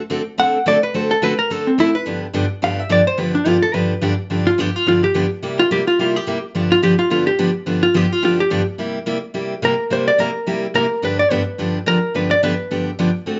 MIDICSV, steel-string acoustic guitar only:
0, 0, Header, 1, 2, 480
1, 0, Start_track
1, 0, Tempo, 279981
1, 1613, Time_signature, 4, 2, 24, 8
1, 22964, End_track
2, 0, Start_track
2, 0, Title_t, "Steel-string acoustic guitar"
2, 0, Program_c, 0, 25
2, 167, Note_on_c, 0, 50, 73
2, 172, Note_on_c, 0, 57, 73
2, 177, Note_on_c, 0, 60, 81
2, 184, Note_on_c, 0, 66, 81
2, 187, Note_on_c, 0, 69, 80
2, 352, Note_off_c, 0, 50, 0
2, 355, Note_off_c, 0, 57, 0
2, 357, Note_off_c, 0, 60, 0
2, 361, Note_off_c, 0, 66, 0
2, 362, Note_off_c, 0, 69, 0
2, 645, Note_on_c, 0, 50, 61
2, 652, Note_on_c, 0, 57, 61
2, 655, Note_on_c, 0, 60, 63
2, 661, Note_on_c, 0, 66, 67
2, 663, Note_on_c, 0, 69, 65
2, 974, Note_off_c, 0, 50, 0
2, 978, Note_off_c, 0, 57, 0
2, 979, Note_off_c, 0, 60, 0
2, 982, Note_off_c, 0, 66, 0
2, 983, Note_off_c, 0, 69, 0
2, 1128, Note_on_c, 0, 50, 79
2, 1135, Note_on_c, 0, 57, 80
2, 1136, Note_on_c, 0, 60, 70
2, 1143, Note_on_c, 0, 66, 75
2, 1147, Note_on_c, 0, 69, 80
2, 1312, Note_off_c, 0, 50, 0
2, 1316, Note_off_c, 0, 57, 0
2, 1316, Note_off_c, 0, 60, 0
2, 1320, Note_off_c, 0, 66, 0
2, 1322, Note_off_c, 0, 69, 0
2, 1613, Note_on_c, 0, 50, 66
2, 1618, Note_on_c, 0, 57, 57
2, 1618, Note_on_c, 0, 60, 64
2, 1628, Note_on_c, 0, 66, 69
2, 1630, Note_on_c, 0, 69, 73
2, 1938, Note_off_c, 0, 50, 0
2, 1941, Note_off_c, 0, 57, 0
2, 1941, Note_off_c, 0, 60, 0
2, 1946, Note_off_c, 0, 66, 0
2, 1947, Note_off_c, 0, 69, 0
2, 2090, Note_on_c, 0, 50, 78
2, 2098, Note_on_c, 0, 57, 77
2, 2099, Note_on_c, 0, 60, 82
2, 2103, Note_on_c, 0, 66, 82
2, 2108, Note_on_c, 0, 69, 87
2, 2273, Note_off_c, 0, 50, 0
2, 2277, Note_off_c, 0, 57, 0
2, 2278, Note_off_c, 0, 60, 0
2, 2280, Note_off_c, 0, 66, 0
2, 2283, Note_off_c, 0, 69, 0
2, 2573, Note_on_c, 0, 50, 58
2, 2578, Note_on_c, 0, 57, 56
2, 2582, Note_on_c, 0, 60, 66
2, 2589, Note_on_c, 0, 66, 70
2, 2590, Note_on_c, 0, 69, 66
2, 2899, Note_off_c, 0, 50, 0
2, 2901, Note_off_c, 0, 57, 0
2, 2903, Note_off_c, 0, 60, 0
2, 2906, Note_off_c, 0, 66, 0
2, 2907, Note_off_c, 0, 69, 0
2, 3049, Note_on_c, 0, 50, 65
2, 3058, Note_on_c, 0, 57, 69
2, 3058, Note_on_c, 0, 60, 82
2, 3064, Note_on_c, 0, 66, 79
2, 3071, Note_on_c, 0, 69, 92
2, 3233, Note_off_c, 0, 50, 0
2, 3237, Note_off_c, 0, 60, 0
2, 3238, Note_off_c, 0, 57, 0
2, 3240, Note_off_c, 0, 66, 0
2, 3244, Note_off_c, 0, 69, 0
2, 3526, Note_on_c, 0, 43, 59
2, 3530, Note_on_c, 0, 50, 68
2, 3537, Note_on_c, 0, 53, 56
2, 3542, Note_on_c, 0, 59, 59
2, 3545, Note_on_c, 0, 62, 73
2, 3548, Note_on_c, 0, 67, 75
2, 3855, Note_off_c, 0, 43, 0
2, 3857, Note_off_c, 0, 50, 0
2, 3860, Note_off_c, 0, 53, 0
2, 3863, Note_off_c, 0, 59, 0
2, 3864, Note_off_c, 0, 62, 0
2, 3865, Note_off_c, 0, 67, 0
2, 4002, Note_on_c, 0, 43, 82
2, 4008, Note_on_c, 0, 50, 81
2, 4015, Note_on_c, 0, 53, 90
2, 4018, Note_on_c, 0, 59, 81
2, 4019, Note_on_c, 0, 67, 82
2, 4020, Note_on_c, 0, 62, 91
2, 4189, Note_off_c, 0, 43, 0
2, 4193, Note_off_c, 0, 50, 0
2, 4196, Note_off_c, 0, 53, 0
2, 4197, Note_off_c, 0, 59, 0
2, 4198, Note_off_c, 0, 67, 0
2, 4199, Note_off_c, 0, 62, 0
2, 4491, Note_on_c, 0, 43, 63
2, 4493, Note_on_c, 0, 50, 61
2, 4497, Note_on_c, 0, 53, 62
2, 4503, Note_on_c, 0, 59, 63
2, 4503, Note_on_c, 0, 62, 74
2, 4509, Note_on_c, 0, 67, 66
2, 4817, Note_off_c, 0, 43, 0
2, 4818, Note_off_c, 0, 50, 0
2, 4820, Note_off_c, 0, 53, 0
2, 4823, Note_off_c, 0, 59, 0
2, 4823, Note_off_c, 0, 62, 0
2, 4826, Note_off_c, 0, 67, 0
2, 4961, Note_on_c, 0, 43, 80
2, 4967, Note_on_c, 0, 50, 85
2, 4967, Note_on_c, 0, 53, 89
2, 4973, Note_on_c, 0, 59, 82
2, 4976, Note_on_c, 0, 62, 88
2, 4982, Note_on_c, 0, 67, 79
2, 5149, Note_off_c, 0, 43, 0
2, 5152, Note_off_c, 0, 50, 0
2, 5152, Note_off_c, 0, 53, 0
2, 5155, Note_off_c, 0, 59, 0
2, 5157, Note_off_c, 0, 62, 0
2, 5159, Note_off_c, 0, 67, 0
2, 5442, Note_on_c, 0, 43, 61
2, 5444, Note_on_c, 0, 50, 68
2, 5450, Note_on_c, 0, 59, 64
2, 5451, Note_on_c, 0, 53, 64
2, 5458, Note_on_c, 0, 62, 68
2, 5460, Note_on_c, 0, 67, 72
2, 5773, Note_off_c, 0, 43, 0
2, 5774, Note_off_c, 0, 50, 0
2, 5777, Note_off_c, 0, 53, 0
2, 5777, Note_off_c, 0, 59, 0
2, 5781, Note_off_c, 0, 62, 0
2, 5781, Note_off_c, 0, 67, 0
2, 5917, Note_on_c, 0, 43, 84
2, 5921, Note_on_c, 0, 50, 71
2, 5922, Note_on_c, 0, 53, 79
2, 5929, Note_on_c, 0, 59, 86
2, 5933, Note_on_c, 0, 67, 90
2, 5934, Note_on_c, 0, 62, 77
2, 6107, Note_off_c, 0, 43, 0
2, 6109, Note_off_c, 0, 50, 0
2, 6110, Note_off_c, 0, 53, 0
2, 6113, Note_off_c, 0, 59, 0
2, 6115, Note_off_c, 0, 62, 0
2, 6115, Note_off_c, 0, 67, 0
2, 6398, Note_on_c, 0, 43, 60
2, 6407, Note_on_c, 0, 50, 69
2, 6410, Note_on_c, 0, 59, 66
2, 6411, Note_on_c, 0, 53, 67
2, 6415, Note_on_c, 0, 62, 66
2, 6421, Note_on_c, 0, 67, 66
2, 6731, Note_off_c, 0, 43, 0
2, 6736, Note_off_c, 0, 50, 0
2, 6737, Note_off_c, 0, 53, 0
2, 6737, Note_off_c, 0, 59, 0
2, 6739, Note_off_c, 0, 62, 0
2, 6743, Note_off_c, 0, 67, 0
2, 6882, Note_on_c, 0, 43, 83
2, 6888, Note_on_c, 0, 50, 75
2, 6892, Note_on_c, 0, 53, 75
2, 6895, Note_on_c, 0, 59, 75
2, 6899, Note_on_c, 0, 62, 83
2, 6904, Note_on_c, 0, 67, 92
2, 7070, Note_off_c, 0, 43, 0
2, 7073, Note_off_c, 0, 50, 0
2, 7075, Note_off_c, 0, 53, 0
2, 7076, Note_off_c, 0, 59, 0
2, 7078, Note_off_c, 0, 62, 0
2, 7080, Note_off_c, 0, 67, 0
2, 7370, Note_on_c, 0, 43, 66
2, 7376, Note_on_c, 0, 50, 59
2, 7380, Note_on_c, 0, 53, 62
2, 7385, Note_on_c, 0, 59, 61
2, 7387, Note_on_c, 0, 62, 60
2, 7392, Note_on_c, 0, 67, 61
2, 7697, Note_off_c, 0, 43, 0
2, 7700, Note_off_c, 0, 50, 0
2, 7702, Note_off_c, 0, 53, 0
2, 7705, Note_off_c, 0, 59, 0
2, 7706, Note_off_c, 0, 62, 0
2, 7708, Note_off_c, 0, 67, 0
2, 7852, Note_on_c, 0, 43, 74
2, 7858, Note_on_c, 0, 50, 79
2, 7861, Note_on_c, 0, 53, 82
2, 7868, Note_on_c, 0, 59, 76
2, 7868, Note_on_c, 0, 62, 75
2, 7872, Note_on_c, 0, 67, 79
2, 8035, Note_off_c, 0, 43, 0
2, 8038, Note_off_c, 0, 50, 0
2, 8040, Note_off_c, 0, 53, 0
2, 8043, Note_off_c, 0, 59, 0
2, 8043, Note_off_c, 0, 62, 0
2, 8045, Note_off_c, 0, 67, 0
2, 8338, Note_on_c, 0, 43, 61
2, 8341, Note_on_c, 0, 50, 60
2, 8342, Note_on_c, 0, 53, 59
2, 8350, Note_on_c, 0, 59, 59
2, 8352, Note_on_c, 0, 67, 62
2, 8353, Note_on_c, 0, 62, 62
2, 8662, Note_off_c, 0, 43, 0
2, 8663, Note_off_c, 0, 50, 0
2, 8664, Note_off_c, 0, 53, 0
2, 8668, Note_off_c, 0, 59, 0
2, 8669, Note_off_c, 0, 62, 0
2, 8669, Note_off_c, 0, 67, 0
2, 8815, Note_on_c, 0, 43, 66
2, 8819, Note_on_c, 0, 50, 83
2, 8824, Note_on_c, 0, 53, 75
2, 8828, Note_on_c, 0, 59, 79
2, 8831, Note_on_c, 0, 62, 75
2, 8834, Note_on_c, 0, 67, 82
2, 8997, Note_off_c, 0, 43, 0
2, 8999, Note_off_c, 0, 50, 0
2, 9001, Note_off_c, 0, 53, 0
2, 9004, Note_off_c, 0, 59, 0
2, 9005, Note_off_c, 0, 62, 0
2, 9007, Note_off_c, 0, 67, 0
2, 9300, Note_on_c, 0, 48, 59
2, 9305, Note_on_c, 0, 55, 70
2, 9311, Note_on_c, 0, 58, 67
2, 9314, Note_on_c, 0, 64, 62
2, 9319, Note_on_c, 0, 67, 65
2, 9623, Note_off_c, 0, 48, 0
2, 9626, Note_off_c, 0, 55, 0
2, 9629, Note_off_c, 0, 58, 0
2, 9630, Note_off_c, 0, 64, 0
2, 9633, Note_off_c, 0, 67, 0
2, 9788, Note_on_c, 0, 55, 88
2, 9789, Note_on_c, 0, 48, 78
2, 9796, Note_on_c, 0, 58, 82
2, 9797, Note_on_c, 0, 64, 86
2, 9804, Note_on_c, 0, 67, 75
2, 9964, Note_off_c, 0, 48, 0
2, 9964, Note_off_c, 0, 55, 0
2, 9968, Note_off_c, 0, 58, 0
2, 9969, Note_off_c, 0, 64, 0
2, 9972, Note_off_c, 0, 67, 0
2, 10272, Note_on_c, 0, 48, 58
2, 10274, Note_on_c, 0, 55, 62
2, 10280, Note_on_c, 0, 58, 60
2, 10282, Note_on_c, 0, 64, 63
2, 10286, Note_on_c, 0, 67, 64
2, 10590, Note_off_c, 0, 48, 0
2, 10591, Note_off_c, 0, 55, 0
2, 10593, Note_off_c, 0, 58, 0
2, 10595, Note_off_c, 0, 64, 0
2, 10597, Note_off_c, 0, 67, 0
2, 10744, Note_on_c, 0, 48, 71
2, 10749, Note_on_c, 0, 55, 75
2, 10756, Note_on_c, 0, 58, 90
2, 10760, Note_on_c, 0, 64, 74
2, 10764, Note_on_c, 0, 67, 73
2, 10923, Note_off_c, 0, 48, 0
2, 10925, Note_off_c, 0, 55, 0
2, 10929, Note_off_c, 0, 58, 0
2, 10930, Note_off_c, 0, 64, 0
2, 10932, Note_off_c, 0, 67, 0
2, 11222, Note_on_c, 0, 43, 58
2, 11226, Note_on_c, 0, 50, 64
2, 11231, Note_on_c, 0, 53, 70
2, 11233, Note_on_c, 0, 59, 66
2, 11240, Note_on_c, 0, 67, 68
2, 11241, Note_on_c, 0, 62, 68
2, 11545, Note_off_c, 0, 43, 0
2, 11547, Note_off_c, 0, 50, 0
2, 11549, Note_off_c, 0, 53, 0
2, 11551, Note_off_c, 0, 59, 0
2, 11554, Note_off_c, 0, 67, 0
2, 11555, Note_off_c, 0, 62, 0
2, 11698, Note_on_c, 0, 43, 71
2, 11706, Note_on_c, 0, 50, 74
2, 11709, Note_on_c, 0, 53, 86
2, 11711, Note_on_c, 0, 59, 72
2, 11713, Note_on_c, 0, 62, 82
2, 11718, Note_on_c, 0, 67, 86
2, 11880, Note_off_c, 0, 43, 0
2, 11884, Note_off_c, 0, 50, 0
2, 11885, Note_off_c, 0, 53, 0
2, 11886, Note_off_c, 0, 59, 0
2, 11887, Note_off_c, 0, 62, 0
2, 11890, Note_off_c, 0, 67, 0
2, 12175, Note_on_c, 0, 43, 61
2, 12179, Note_on_c, 0, 50, 67
2, 12185, Note_on_c, 0, 53, 62
2, 12188, Note_on_c, 0, 59, 69
2, 12190, Note_on_c, 0, 62, 74
2, 12194, Note_on_c, 0, 67, 67
2, 12502, Note_off_c, 0, 43, 0
2, 12504, Note_off_c, 0, 50, 0
2, 12507, Note_off_c, 0, 53, 0
2, 12509, Note_off_c, 0, 59, 0
2, 12509, Note_off_c, 0, 62, 0
2, 12512, Note_off_c, 0, 67, 0
2, 12662, Note_on_c, 0, 43, 79
2, 12663, Note_on_c, 0, 50, 84
2, 12667, Note_on_c, 0, 53, 73
2, 12672, Note_on_c, 0, 62, 83
2, 12673, Note_on_c, 0, 59, 80
2, 12674, Note_on_c, 0, 67, 84
2, 12842, Note_off_c, 0, 43, 0
2, 12843, Note_off_c, 0, 50, 0
2, 12845, Note_off_c, 0, 53, 0
2, 12847, Note_off_c, 0, 62, 0
2, 12848, Note_off_c, 0, 59, 0
2, 12848, Note_off_c, 0, 67, 0
2, 13132, Note_on_c, 0, 43, 59
2, 13138, Note_on_c, 0, 50, 64
2, 13142, Note_on_c, 0, 53, 54
2, 13145, Note_on_c, 0, 59, 62
2, 13150, Note_on_c, 0, 62, 66
2, 13152, Note_on_c, 0, 67, 72
2, 13461, Note_off_c, 0, 43, 0
2, 13464, Note_off_c, 0, 50, 0
2, 13466, Note_off_c, 0, 53, 0
2, 13467, Note_off_c, 0, 59, 0
2, 13470, Note_off_c, 0, 62, 0
2, 13471, Note_off_c, 0, 67, 0
2, 13615, Note_on_c, 0, 43, 79
2, 13619, Note_on_c, 0, 50, 84
2, 13622, Note_on_c, 0, 53, 79
2, 13624, Note_on_c, 0, 59, 75
2, 13627, Note_on_c, 0, 62, 76
2, 13633, Note_on_c, 0, 67, 83
2, 13799, Note_off_c, 0, 43, 0
2, 13801, Note_off_c, 0, 50, 0
2, 13803, Note_off_c, 0, 53, 0
2, 13804, Note_off_c, 0, 59, 0
2, 13805, Note_off_c, 0, 62, 0
2, 13808, Note_off_c, 0, 67, 0
2, 14095, Note_on_c, 0, 43, 60
2, 14100, Note_on_c, 0, 50, 60
2, 14103, Note_on_c, 0, 59, 62
2, 14105, Note_on_c, 0, 53, 63
2, 14109, Note_on_c, 0, 62, 59
2, 14112, Note_on_c, 0, 67, 76
2, 14423, Note_off_c, 0, 43, 0
2, 14425, Note_off_c, 0, 50, 0
2, 14426, Note_off_c, 0, 59, 0
2, 14428, Note_off_c, 0, 53, 0
2, 14430, Note_off_c, 0, 62, 0
2, 14431, Note_off_c, 0, 67, 0
2, 14577, Note_on_c, 0, 43, 78
2, 14582, Note_on_c, 0, 50, 67
2, 14589, Note_on_c, 0, 53, 78
2, 14589, Note_on_c, 0, 62, 91
2, 14591, Note_on_c, 0, 59, 78
2, 14595, Note_on_c, 0, 67, 83
2, 14760, Note_off_c, 0, 43, 0
2, 14763, Note_off_c, 0, 50, 0
2, 14766, Note_off_c, 0, 53, 0
2, 14766, Note_off_c, 0, 62, 0
2, 14768, Note_off_c, 0, 59, 0
2, 14769, Note_off_c, 0, 67, 0
2, 15056, Note_on_c, 0, 48, 59
2, 15062, Note_on_c, 0, 55, 61
2, 15070, Note_on_c, 0, 58, 60
2, 15076, Note_on_c, 0, 64, 65
2, 15078, Note_on_c, 0, 67, 66
2, 15383, Note_off_c, 0, 48, 0
2, 15387, Note_off_c, 0, 55, 0
2, 15391, Note_off_c, 0, 58, 0
2, 15393, Note_off_c, 0, 64, 0
2, 15394, Note_off_c, 0, 67, 0
2, 15533, Note_on_c, 0, 48, 75
2, 15537, Note_on_c, 0, 55, 81
2, 15541, Note_on_c, 0, 58, 82
2, 15546, Note_on_c, 0, 64, 84
2, 15548, Note_on_c, 0, 67, 80
2, 15718, Note_off_c, 0, 48, 0
2, 15721, Note_off_c, 0, 55, 0
2, 15722, Note_off_c, 0, 58, 0
2, 15725, Note_off_c, 0, 64, 0
2, 15726, Note_off_c, 0, 67, 0
2, 16010, Note_on_c, 0, 48, 55
2, 16016, Note_on_c, 0, 55, 62
2, 16024, Note_on_c, 0, 58, 65
2, 16024, Note_on_c, 0, 64, 60
2, 16029, Note_on_c, 0, 67, 64
2, 16340, Note_off_c, 0, 48, 0
2, 16343, Note_off_c, 0, 55, 0
2, 16348, Note_off_c, 0, 58, 0
2, 16348, Note_off_c, 0, 64, 0
2, 16350, Note_off_c, 0, 67, 0
2, 16496, Note_on_c, 0, 48, 82
2, 16499, Note_on_c, 0, 55, 69
2, 16505, Note_on_c, 0, 58, 74
2, 16512, Note_on_c, 0, 64, 80
2, 16516, Note_on_c, 0, 67, 77
2, 16680, Note_off_c, 0, 48, 0
2, 16682, Note_off_c, 0, 55, 0
2, 16685, Note_off_c, 0, 58, 0
2, 16688, Note_off_c, 0, 64, 0
2, 16690, Note_off_c, 0, 67, 0
2, 16978, Note_on_c, 0, 48, 63
2, 16983, Note_on_c, 0, 55, 66
2, 16991, Note_on_c, 0, 58, 69
2, 16993, Note_on_c, 0, 64, 60
2, 16996, Note_on_c, 0, 67, 72
2, 17304, Note_off_c, 0, 48, 0
2, 17307, Note_off_c, 0, 55, 0
2, 17311, Note_off_c, 0, 58, 0
2, 17312, Note_off_c, 0, 64, 0
2, 17314, Note_off_c, 0, 67, 0
2, 17458, Note_on_c, 0, 48, 73
2, 17468, Note_on_c, 0, 55, 76
2, 17470, Note_on_c, 0, 58, 74
2, 17472, Note_on_c, 0, 64, 86
2, 17477, Note_on_c, 0, 67, 86
2, 17641, Note_off_c, 0, 48, 0
2, 17646, Note_off_c, 0, 55, 0
2, 17647, Note_off_c, 0, 58, 0
2, 17649, Note_off_c, 0, 64, 0
2, 17651, Note_off_c, 0, 67, 0
2, 17941, Note_on_c, 0, 48, 56
2, 17949, Note_on_c, 0, 55, 65
2, 17953, Note_on_c, 0, 58, 60
2, 17958, Note_on_c, 0, 64, 64
2, 17959, Note_on_c, 0, 67, 67
2, 18266, Note_off_c, 0, 48, 0
2, 18270, Note_off_c, 0, 55, 0
2, 18272, Note_off_c, 0, 58, 0
2, 18275, Note_off_c, 0, 64, 0
2, 18275, Note_off_c, 0, 67, 0
2, 18420, Note_on_c, 0, 48, 79
2, 18422, Note_on_c, 0, 55, 74
2, 18426, Note_on_c, 0, 58, 79
2, 18433, Note_on_c, 0, 64, 82
2, 18437, Note_on_c, 0, 67, 79
2, 18602, Note_off_c, 0, 48, 0
2, 18603, Note_off_c, 0, 55, 0
2, 18605, Note_off_c, 0, 58, 0
2, 18609, Note_off_c, 0, 64, 0
2, 18611, Note_off_c, 0, 67, 0
2, 18898, Note_on_c, 0, 43, 58
2, 18901, Note_on_c, 0, 50, 61
2, 18908, Note_on_c, 0, 53, 59
2, 18912, Note_on_c, 0, 62, 70
2, 18913, Note_on_c, 0, 59, 65
2, 18919, Note_on_c, 0, 67, 69
2, 19224, Note_off_c, 0, 43, 0
2, 19226, Note_off_c, 0, 50, 0
2, 19229, Note_off_c, 0, 53, 0
2, 19232, Note_off_c, 0, 59, 0
2, 19232, Note_off_c, 0, 62, 0
2, 19235, Note_off_c, 0, 67, 0
2, 19379, Note_on_c, 0, 43, 79
2, 19382, Note_on_c, 0, 50, 85
2, 19391, Note_on_c, 0, 53, 79
2, 19392, Note_on_c, 0, 59, 90
2, 19394, Note_on_c, 0, 62, 98
2, 19394, Note_on_c, 0, 67, 91
2, 19561, Note_off_c, 0, 43, 0
2, 19563, Note_off_c, 0, 50, 0
2, 19568, Note_off_c, 0, 53, 0
2, 19568, Note_off_c, 0, 59, 0
2, 19569, Note_off_c, 0, 62, 0
2, 19569, Note_off_c, 0, 67, 0
2, 19858, Note_on_c, 0, 43, 60
2, 19868, Note_on_c, 0, 50, 66
2, 19868, Note_on_c, 0, 53, 65
2, 19874, Note_on_c, 0, 59, 70
2, 19877, Note_on_c, 0, 62, 62
2, 19877, Note_on_c, 0, 67, 64
2, 20184, Note_off_c, 0, 43, 0
2, 20189, Note_off_c, 0, 50, 0
2, 20189, Note_off_c, 0, 53, 0
2, 20193, Note_off_c, 0, 59, 0
2, 20194, Note_off_c, 0, 62, 0
2, 20194, Note_off_c, 0, 67, 0
2, 20336, Note_on_c, 0, 43, 79
2, 20340, Note_on_c, 0, 50, 75
2, 20345, Note_on_c, 0, 53, 82
2, 20348, Note_on_c, 0, 59, 80
2, 20354, Note_on_c, 0, 62, 79
2, 20355, Note_on_c, 0, 67, 85
2, 20520, Note_off_c, 0, 43, 0
2, 20522, Note_off_c, 0, 50, 0
2, 20525, Note_off_c, 0, 53, 0
2, 20526, Note_off_c, 0, 59, 0
2, 20529, Note_off_c, 0, 62, 0
2, 20529, Note_off_c, 0, 67, 0
2, 20821, Note_on_c, 0, 43, 59
2, 20826, Note_on_c, 0, 50, 62
2, 20826, Note_on_c, 0, 53, 61
2, 20833, Note_on_c, 0, 59, 60
2, 20835, Note_on_c, 0, 62, 64
2, 20841, Note_on_c, 0, 67, 65
2, 21146, Note_off_c, 0, 43, 0
2, 21148, Note_off_c, 0, 50, 0
2, 21148, Note_off_c, 0, 53, 0
2, 21152, Note_off_c, 0, 59, 0
2, 21153, Note_off_c, 0, 62, 0
2, 21156, Note_off_c, 0, 67, 0
2, 21305, Note_on_c, 0, 43, 80
2, 21309, Note_on_c, 0, 50, 74
2, 21312, Note_on_c, 0, 59, 84
2, 21315, Note_on_c, 0, 53, 88
2, 21319, Note_on_c, 0, 62, 85
2, 21325, Note_on_c, 0, 67, 88
2, 21484, Note_off_c, 0, 43, 0
2, 21486, Note_off_c, 0, 50, 0
2, 21488, Note_off_c, 0, 59, 0
2, 21489, Note_off_c, 0, 53, 0
2, 21492, Note_off_c, 0, 62, 0
2, 21494, Note_off_c, 0, 67, 0
2, 21785, Note_on_c, 0, 43, 58
2, 21790, Note_on_c, 0, 50, 59
2, 21794, Note_on_c, 0, 59, 58
2, 21795, Note_on_c, 0, 62, 67
2, 21796, Note_on_c, 0, 53, 56
2, 21803, Note_on_c, 0, 67, 62
2, 22108, Note_off_c, 0, 43, 0
2, 22110, Note_off_c, 0, 50, 0
2, 22112, Note_off_c, 0, 59, 0
2, 22113, Note_off_c, 0, 53, 0
2, 22113, Note_off_c, 0, 62, 0
2, 22116, Note_off_c, 0, 67, 0
2, 22264, Note_on_c, 0, 43, 78
2, 22266, Note_on_c, 0, 50, 82
2, 22270, Note_on_c, 0, 53, 77
2, 22276, Note_on_c, 0, 59, 73
2, 22281, Note_on_c, 0, 62, 81
2, 22281, Note_on_c, 0, 67, 75
2, 22443, Note_off_c, 0, 43, 0
2, 22445, Note_off_c, 0, 50, 0
2, 22446, Note_off_c, 0, 53, 0
2, 22449, Note_off_c, 0, 59, 0
2, 22452, Note_off_c, 0, 62, 0
2, 22452, Note_off_c, 0, 67, 0
2, 22734, Note_on_c, 0, 50, 56
2, 22743, Note_on_c, 0, 57, 59
2, 22747, Note_on_c, 0, 66, 57
2, 22749, Note_on_c, 0, 60, 62
2, 22757, Note_on_c, 0, 69, 62
2, 22964, Note_off_c, 0, 50, 0
2, 22964, Note_off_c, 0, 57, 0
2, 22964, Note_off_c, 0, 60, 0
2, 22964, Note_off_c, 0, 66, 0
2, 22964, Note_off_c, 0, 69, 0
2, 22964, End_track
0, 0, End_of_file